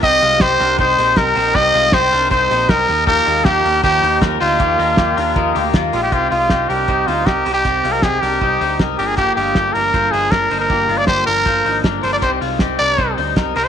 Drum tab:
HH |xoxoxoxo|xoxoxoxo|xoxoxoxo|xoxoxoxo|
SD |--o---o-|--o---o-|--o---o-|--o---o-|
BD |o-o-o-o-|o-o-o-o-|o-o-o-o-|o-o-o-o-|

HH |xoxoxoxo|xoxoxoxo|xoxoxoxo|xoxoxoxo|
SD |--o---o-|--o---o-|--o---o-|--o---o-|
BD |o-o-o-o-|o-o-o-o-|o-o-o-o-|o-o-o-o-|

HH |xoxoxoxo|
SD |--o---o-|
BD |o-o-o-o-|